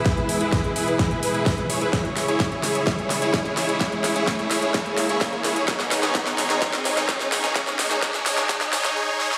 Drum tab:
HH |xxoxxxoxxxoxoxox|xxoxxxoxxxoxxxox|xxoxxxoxxxoxoxox|xxoxxxoxxxoxxxox|
SD |o---o---o---o---|o-o-o-o-o-o-o-o-|o-o-o-o-o-o-o-o-|oooooooooooooooo|
BD |o---o---o---o---|o---o---o---o---|o---o---o---o---|o---o---o---o---|

HH |xxoxxxoxxxox----|
SD |oooooooooooo--oo|
BD |o---o---o-------|